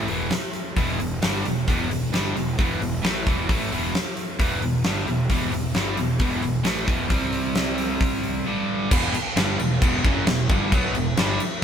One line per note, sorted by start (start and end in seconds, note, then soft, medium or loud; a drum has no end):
0.08 0.30 E1 medium
0.08 0.30 E2 medium
0.08 0.31 B2 medium
0.08 0.31 E3 medium
0.08 open hi-hat medium
0.30 snare loud
0.30 open hi-hat medium
0.53 open hi-hat medium
0.76 0.98 E1 medium
0.76 0.99 E2 medium
0.76 0.99 B2 medium
0.76 0.99 E3 medium
0.76 kick medium
0.76 open hi-hat medium
1.00 1.21 E1 medium
1.00 1.18 E2 medium
1.00 1.18 B2 medium
1.00 open hi-hat soft
1.22 1.44 G1 medium
1.22 1.44 G2 medium
1.22 1.44 D3 medium
1.22 1.45 G3 medium
1.22 snare loud
1.22 open hi-hat medium
1.45 1.67 E1 medium
1.45 1.63 E2 medium
1.45 1.64 B2 medium
1.45 open hi-hat medium
1.68 1.89 E1 medium
1.68 1.90 E2 medium
1.68 1.90 B2 medium
1.68 1.91 E3 medium
1.68 kick medium
1.68 open hi-hat medium
1.91 2.11 E1 medium
1.91 2.09 E2 soft
1.91 2.09 B2 medium
1.91 open hi-hat medium
2.13 2.34 G1 medium
2.13 2.35 G2 medium
2.13 2.35 D3 medium
2.13 2.36 G3 medium
2.13 snare medium
2.13 open hi-hat medium
2.36 2.57 E1 medium
2.36 2.54 E2 medium
2.36 2.54 B2 medium
2.36 open hi-hat medium
2.59 2.80 E1 medium
2.59 2.80 E2 medium
2.59 2.81 B2 medium
2.59 2.81 E3 loud
2.59 kick medium
2.59 open hi-hat medium
2.81 3.02 E1 medium
2.81 2.99 E2 medium
2.81 2.99 B2 medium
2.81 open hi-hat soft
3.03 3.25 A1 medium
3.03 3.25 A2 medium
3.03 3.26 E3 loud
3.03 3.26 A3 medium
3.03 snare loud
3.03 open hi-hat medium
3.26 3.47 E1 medium
3.26 3.48 E2 medium
3.26 3.48 B2 medium
3.26 3.48 E3 medium
3.26 kick loud
3.26 open hi-hat soft
3.49 3.70 A1 medium
3.49 3.71 A2 medium
3.49 3.71 E3 medium
3.49 3.72 A3 loud
3.49 kick loud
3.49 open hi-hat medium
3.72 3.93 E1 medium
3.72 3.94 E2 medium
3.72 3.94 B2 medium
3.72 3.94 E3 medium
3.72 open hi-hat medium
3.95 snare loud
3.95 open hi-hat medium
4.17 open hi-hat medium
4.39 4.61 E1 medium
4.39 4.61 E2 medium
4.39 4.62 B2 medium
4.39 4.62 E3 loud
4.39 kick medium
4.39 open hi-hat medium
4.62 4.83 E1 medium
4.62 4.80 E2 medium
4.62 4.80 B2 medium
4.62 open hi-hat soft
4.84 5.06 G1 medium
4.84 5.07 G2 medium
4.84 5.07 D3 medium
4.84 5.07 G3 medium
4.84 snare loud
4.84 open hi-hat medium
5.07 5.28 E1 medium
5.07 5.26 E2 medium
5.07 5.26 B2 medium
5.07 open hi-hat medium
5.30 5.51 E1 medium
5.30 5.52 E2 medium
5.30 5.52 B2 medium
5.30 5.52 E3 loud
5.30 kick medium
5.30 open hi-hat medium
5.52 5.74 E1 medium
5.52 5.71 E2 medium
5.52 5.71 B2 medium
5.52 open hi-hat medium
5.74 5.96 G1 medium
5.74 5.97 G2 medium
5.74 5.97 D3 medium
5.74 5.98 G3 loud
5.74 snare medium
5.74 open hi-hat medium
5.97 6.19 E1 medium
5.97 6.16 E2 medium
5.97 6.16 B2 medium
5.97 open hi-hat medium
6.19 6.41 E1 medium
6.19 6.42 E2 medium
6.19 6.42 B2 medium
6.19 6.42 E3 loud
6.19 kick medium
6.19 open hi-hat medium
6.42 6.64 E1 medium
6.42 6.61 E2 medium
6.42 6.61 B2 medium
6.42 open hi-hat soft
6.64 6.86 A1 medium
6.64 6.87 A2 medium
6.64 6.86 E3 medium
6.64 6.87 A3 loud
6.64 snare loud
6.64 open hi-hat medium
6.86 7.09 E1 medium
6.86 7.09 E2 medium
6.86 7.09 B2 medium
6.86 7.10 E3 loud
6.86 kick loud
6.86 open hi-hat medium
7.09 8.42 C2 medium
7.09 8.45 C3 medium
7.09 8.45 G3 loud
7.09 8.46 C4 loud
7.09 kick medium
7.09 open hi-hat medium
7.33 open hi-hat medium
7.55 snare loud
7.55 open hi-hat medium
7.78 open hi-hat medium
8.00 kick loud
8.00 open hi-hat medium
8.23 open hi-hat soft
8.46 8.90 G2 medium
8.46 8.91 D3 medium
8.46 8.91 G3 loud
8.90 9.13 E1 medium
8.90 9.13 E2 medium
8.90 9.13 B2 loud
8.90 9.14 E3 loud
8.90 kick loud
8.90 crash loud
8.90 crash medium
9.14 muted overdriven electric guitar stroke medium
9.14 muted picked electric bass stroke soft
9.14 crash medium
9.36 9.58 G1 medium
9.36 9.58 G2 medium
9.36 9.59 D3 medium
9.36 9.59 G3 loud
9.36 snare loud
9.36 crash medium
9.59 9.80 E1 medium
9.59 9.77 E2 medium
9.59 9.78 B2 medium
9.59 crash medium
9.82 10.03 E1 medium
9.82 10.04 E2 loud
9.82 10.04 B2 medium
9.82 10.04 E3 medium
9.82 kick loud
9.82 crash medium
10.04 10.26 F#1 medium
10.04 10.26 F#2 medium
10.04 10.27 C#3 medium
10.04 10.27 F#3 loud
10.04 kick loud
10.04 crash medium
10.26 10.48 E1 medium
10.26 10.45 E2 medium
10.26 10.45 B2 medium
10.26 snare loud
10.26 crash medium
10.50 10.71 G1 medium
10.50 10.71 G2 medium
10.50 10.72 D3 medium
10.50 10.72 G3 loud
10.50 kick loud
10.50 crash medium
10.72 10.93 B1 medium
10.72 10.94 B2 medium
10.72 10.95 F#3 medium
10.72 10.95 B3 loud
10.72 kick loud
10.72 crash medium
10.95 11.16 E1 medium
10.95 11.13 E2 medium
10.95 11.13 B2 medium
10.95 crash medium
11.16 11.38 G1 medium
11.16 11.39 G2 medium
11.16 11.40 D3 medium
11.16 11.40 G3 loud
11.16 snare loud
11.16 crash medium
11.40 crash medium